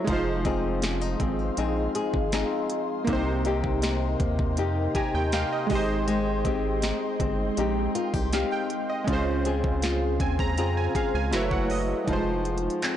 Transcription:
0.04 analog synth bass F1, nylon-string guitar F3, synth keys G#3 D#4, ambient pad G#4 D#5 F5 C6, kick, closed hi-hat
0.10 synth keys F4 C5
0.45 nylon-string guitar C4 D#4 G#4, kick, closed hi-hat
0.82 nylon-string guitar C#4, snare, closed hi-hat
1.01 nylon-string guitar D#4
1.20 analog synth bass G#1, nylon-string guitar C4, harp G#4, kick, closed hi-hat
1.44 harp C5
1.57 analog synth bass A#1, nylon-string guitar C4 D#4 G#4, closed hi-hat
1.68 harp D#5
1.95 nylon-string guitar G#4, closed hi-hat
2.14 analog synth bass G#1, kick
2.32 nylon-string guitar C4 D#4 G#4, snare, closed hi-hat
2.70 closed hi-hat
3.04 analog synth bass C2, nylon-string guitar C3, synth keys A#3 D#4, ambient pad A#4 G5, kick, closed hi-hat
3.10 synth keys G4 C5
3.45 nylon-string guitar A#3 D#4 G4, closed hi-hat
3.64 kick
3.82 nylon-string guitar D#4, snare, closed hi-hat
4.20 analog synth bass D#2, nylon-string guitar A#3, kick, closed hi-hat
4.39 kick
4.57 analog synth bass F2, nylon-string guitar A#3 D#4 G4, harp D#4, closed hi-hat
4.95 nylon-string guitar G4, synth keys G#5 A#5, kick, closed hi-hat
5.14 analog synth bass D#2, synth keys G5
5.32 nylon-string guitar A#3 D#4 G4, synth keys F5 G5, snare, closed hi-hat
5.52 synth keys D#5
5.67 analog synth bass G#1, synth keys G#3 D#4, nylon-string guitar G#3, ambient pad G#3, kick, open hi-hat
5.71 synth keys G4 D#5
5.75 synth keys C5
6.08 nylon-string guitar G#3, closed hi-hat
6.45 nylon-string guitar C4 D#4 G4, kick, closed hi-hat
6.82 nylon-string guitar D#4, snare, closed hi-hat
7.20 analog synth bass G1, nylon-string guitar C4, kick, closed hi-hat
7.57 analog synth bass A#1, nylon-string guitar C4 D#4 G4, closed hi-hat
7.95 nylon-string guitar F4, harp A#4, closed hi-hat
8.14 analog synth bass C2, nylon-string guitar G4, kick
8.32 nylon-string guitar C4 D#4 G4, synth keys F5, snare, closed hi-hat
8.52 synth keys G5
8.70 closed hi-hat
8.90 synth keys D#5
9.04 analog synth bass C#2, nylon-string guitar C#3, synth keys G#3 C#4, ambient pad G#4 C5 F5, kick, closed hi-hat
9.10 synth keys F4 C5
9.45 nylon-string guitar C4 F4 G#4, closed hi-hat
9.64 kick
9.82 nylon-string guitar F4, snare, closed hi-hat
10.20 analog synth bass D#2, nylon-string guitar C4, synth keys G#5, kick, closed hi-hat
10.39 synth keys A#5, kick
10.58 analog synth bass F2, nylon-string guitar C4 F4 G#4, synth keys A#5, closed hi-hat
10.77 synth keys G#5
10.95 nylon-string guitar G#4, synth keys F5, kick, closed hi-hat
11.14 analog synth bass C#2, synth keys G#5
11.31 analog synth bass F#1, nylon-string guitar F#3, synth keys A3 E4 F#4 E5, harp B4, snare, closed hi-hat
11.36 synth keys C#5
11.51 synth keys F#5, kick
11.57 harp G#5
11.70 synth keys D#5, open hi-hat
12.04 analog synth bass F1, nylon-string guitar F3, synth keys G3 D#4, ambient pad G#4 D#5 F5 G#5, kick, closed hi-hat
12.10 synth keys G#3 F4 C5
12.45 closed hi-hat
12.58 closed hi-hat
12.70 closed hi-hat
12.82 nylon-string guitar C4, clap, closed hi-hat

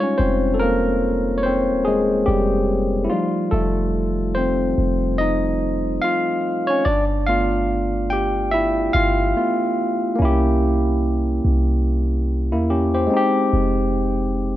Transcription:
Already playing: tine electric piano G3 G#3 D#4 F4 F5
0.00 tine electric piano C#4 C#5
0.18 808-style bass F1, tine electric piano C4 C5
0.54 tine electric piano A4
0.60 tine electric piano A#3 A#4
1.38 tine electric piano C#5
1.43 tine electric piano C4 C5
1.69 808-style bass D#1
1.85 tine electric piano G#3 G#4
2.26 808-style bass F1, tine electric piano G3 G4
3.04 tine electric piano E4
3.10 tine electric piano F3 G3 A3 D#4 F4
3.51 808-style bass F1, tine electric piano A3 A4
4.35 tine electric piano C4 C5
4.78 808-style bass F1
5.18 tine electric piano D#4 D#5
6.02 tine electric piano F4 F5
6.67 tine electric piano C#4 C#5
6.85 808-style bass G1, tine electric piano D4 D5
7.27 tine electric piano A3 B3 F4 F5
8.10 tine electric piano G4 G5
8.51 tine electric piano E4 E5
8.93 808-style bass G1, tine electric piano F4 F5
9.36 tine electric piano A3 B3 F4
10.16 tine electric piano A#3 C#4
10.20 808-style bass C2, tine electric piano E4
10.25 tine electric piano G4
11.45 808-style bass C2
12.52 808-style bass E2, tine electric piano A#3 E4
12.70 tine electric piano C#4 G4
12.94 tine electric piano G4 C5
13.07 tine electric piano G#3 C4
13.13 tine electric piano D#4 G4
13.53 808-style bass F1

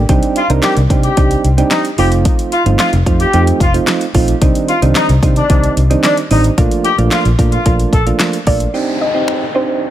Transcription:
0.09 fingered electric bass C2, synth keys G3 C4 D4 D#4 G4, kick, closed hi-hat
0.23 closed hi-hat
0.36 horn section F4, closed hi-hat
0.50 fingered electric bass C2, synth keys G3 C4 D4 D#4 A#4, closed hi-hat
0.63 horn section G4, snare, clap, closed hi-hat
0.77 fingered electric bass C2, closed hi-hat
0.90 fingered electric bass C3, synth keys G3 C4 D4 D#4 G4, kick, closed hi-hat
1.03 horn section G4, closed hi-hat
1.17 fingered electric bass C2, synth keys G3 C4 D4 D#4 G4, kick, closed hi-hat
1.31 closed hi-hat
1.44 fingered electric bass C2, closed hi-hat
1.58 synth keys G3 C4 D4 D#4 G4, closed hi-hat
1.71 horn section D#4, snare, clap, closed hi-hat
1.85 closed hi-hat
1.98 fingered electric bass F1, synth keys F3 A3 C4 D#4 F4, horn section G4, open hi-hat
2.12 closed hi-hat
2.25 kick, closed hi-hat
2.39 closed hi-hat
2.52 horn section F4, closed hi-hat
2.66 fingered electric bass G1, synth keys F3 A3 C4 D#4 F4, closed hi-hat
2.79 horn section F4, snare, clap, closed hi-hat
2.93 fingered electric bass F1, closed hi-hat
3.06 fingered electric bass F2, synth keys F3 A3 C4 D#4 F4, kick, closed hi-hat
3.20 horn section G4, closed hi-hat
3.33 fingered electric bass F2, synth keys F3 A3 C4 D#4 G4, closed hi-hat
3.47 closed hi-hat
3.60 fingered electric bass F1, horn section F4, kick, closed hi-hat
3.74 synth keys F3 A3 C4 D#4 F4, closed hi-hat
3.87 snare, clap, closed hi-hat
4.01 closed hi-hat
4.14 fingered electric bass A#1, synth keys F3 A3 C4 D#4 F4, kick, open hi-hat
4.28 closed hi-hat
4.41 fingered electric bass C2, synth keys D#3 G3 C4 D4 D#4, kick, closed hi-hat
4.55 closed hi-hat
4.68 horn section F4, closed hi-hat
4.82 fingered electric bass C2, synth keys D#3 G3 C4 D4 D#4, closed hi-hat
4.95 horn section D#4, snare, clap, closed hi-hat
5.09 fingered electric bass C2, closed hi-hat
5.23 fingered electric bass C3, synth keys D#3 G3 C4 D4 D#4, kick, closed hi-hat
5.36 horn section D4, closed hi-hat
5.49 fingered electric bass C2, synth keys D#3 G3 C4 D4 D#4, kick, closed hi-hat
5.64 closed hi-hat
5.77 fingered electric bass C2, closed hi-hat
5.90 synth keys D#3 G3 C4 D4 D#4, closed hi-hat
6.04 horn section D4, snare, clap, closed hi-hat
6.17 closed hi-hat
6.31 fingered electric bass A1, synth keys D#3 G3 C4 D4 D#4, horn section D#4, open hi-hat
6.44 closed hi-hat
6.58 fingered electric bass A#1, synth keys F3 A3 A#3 D4 F4, kick, closed hi-hat
6.71 closed hi-hat
6.85 horn section G4, closed hi-hat
6.98 fingered electric bass A#1, synth keys F3 A3 A#3 D4 F4, closed hi-hat
7.11 horn section F4, snare, clap, closed hi-hat
7.25 fingered electric bass A#1, closed hi-hat
7.39 fingered electric bass A#2, synth keys F3 A3 A#3 D4 F4, kick, closed hi-hat
7.52 horn section F4, closed hi-hat
7.66 fingered electric bass A#1, synth keys F3 A3 A#3 D4 F4, kick, closed hi-hat
7.80 closed hi-hat
7.93 fingered electric bass A#1, horn section A4, kick, closed hi-hat
8.06 synth keys F3 A3 A#3 D4 F4, closed hi-hat
8.20 snare, clap, closed hi-hat
8.33 closed hi-hat
8.47 fingered electric bass A#1, synth keys F3 A3 A#3 D4 F4, synth pluck D5, kick, open hi-hat
8.60 closed hi-hat
8.74 synth keys C4 D4 D#4 G4, downlifter
9.01 synth pluck D#5
9.14 synth keys C4 D#4 G4
9.28 finger snap
9.55 synth keys C4 D4 D#4 G4, synth pluck C5

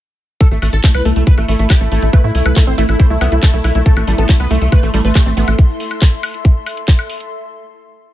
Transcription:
0.41 synth texture A3 E4, analog synth pad A4, supersaw synth A4, kick, closed hi-hat
0.51 analog synth bass A1, supersaw synth A3
0.62 analog synth bass A1, supersaw synth A3, open hi-hat, high woodblock
0.73 analog synth bass A1, supersaw synth A4, closed hi-hat
0.84 supersaw synth A3, kick, clap, closed hi-hat
0.89 analog synth pad E5
0.95 analog synth bass C2, supersaw synth B4, analog synth pad B5, high woodblock
1.05 analog synth bass C2, supersaw synth A3, open hi-hat
1.16 analog synth bass C2, supersaw synth A3, closed hi-hat
1.27 supersaw synth B4, kick, closed hi-hat
1.38 analog synth bass A1, supersaw synth A3, high woodblock
1.48 analog synth bass A1, supersaw synth A3, open hi-hat
1.59 analog synth bass A1, supersaw synth A3, closed hi-hat
1.70 supersaw synth G4, kick, clap, closed hi-hat, high woodblock
1.81 analog synth bass A1, supersaw synth A3
1.92 analog synth bass A1, supersaw synth A3, open hi-hat
2.02 analog synth bass A1, supersaw synth A3, closed hi-hat
2.13 synth arpeggio sound A3, supersaw synth B4, kick, closed hi-hat, high woodblock
2.24 analog synth bass A2, synth arpeggio sound A3, supersaw synth E4
2.35 analog synth bass C2, supersaw synth E4, open hi-hat
2.46 analog synth bass C2, synth arpeggio sound A4, supersaw synth B4, closed hi-hat, high woodblock
2.56 synth arpeggio sound A3, supersaw synth E4, kick, clap, closed hi-hat
2.67 analog synth bass A1, synth arpeggio sound C4, supersaw synth C5
2.78 analog synth bass A1, synth arpeggio sound A3, supersaw synth E4, open hi-hat
2.89 analog synth bass A1, supersaw synth E4, closed hi-hat, high woodblock
3.00 synth arpeggio sound E4, supersaw synth C5, kick, closed hi-hat
3.10 analog synth bass C2, synth arpeggio sound A3, supersaw synth E4
3.21 analog synth bass C2, synth arpeggio sound B3, supersaw synth E4, open hi-hat, high woodblock
3.32 analog synth bass C2, synth arpeggio sound A3, supersaw synth E4, closed hi-hat
3.43 synth arpeggio sound A3, supersaw synth A4, kick, clap, closed hi-hat
3.53 analog synth bass B1, synth arpeggio sound A3, supersaw synth E4
3.64 analog synth bass B1, supersaw synth E4, open hi-hat, high woodblock
3.72 analog synth bass B1, synth arpeggio sound A3, supersaw synth E4, analog synth pad C6, closed hi-hat
3.86 synth arpeggio sound A3, supersaw synth A4, kick, closed hi-hat
3.97 analog synth bass A1, synth arpeggio sound A3, supersaw synth A3, high woodblock
4.07 analog synth bass A1, synth arpeggio sound G3, supersaw synth A3, open hi-hat
4.18 analog synth bass A1, synth arpeggio sound B3, supersaw synth A4, closed hi-hat
4.29 supersaw synth A3, synth arpeggio sound E4, kick, clap, closed hi-hat
4.40 analog synth bass C2, synth arpeggio sound B3, supersaw synth B4, high woodblock
4.51 analog synth bass C2, synth arpeggio sound A3, supersaw synth A3, open hi-hat
4.61 analog synth bass C2, supersaw synth A3, closed hi-hat
4.72 synth arpeggio sound A3, supersaw synth B4, kick, closed hi-hat, high woodblock
4.83 analog synth bass A1, supersaw synth A3, synth arpeggio sound A3
4.94 analog synth bass A1, synth arpeggio sound G3, supersaw synth A3, open hi-hat
5.05 analog synth bass A1, supersaw synth A3, synth arpeggio sound B4, closed hi-hat
5.15 synth arpeggio sound A3, supersaw synth G4, kick, clap, closed hi-hat, high woodblock
5.26 analog synth bass A1, supersaw synth A3, synth arpeggio sound C4
5.37 analog synth bass A1, supersaw synth A3, synth arpeggio sound B3, open hi-hat
5.48 analog synth bass A1, supersaw synth A3, closed hi-hat, high woodblock
5.59 kick, closed hi-hat
5.80 open hi-hat
5.91 closed hi-hat, high woodblock
6.02 kick, clap, closed hi-hat
6.23 open hi-hat, high woodblock
6.34 closed hi-hat
6.45 kick, closed hi-hat
6.66 open hi-hat, high woodblock
6.77 closed hi-hat
6.88 kick, clap, closed hi-hat
6.99 high woodblock
7.10 open hi-hat
7.20 closed hi-hat

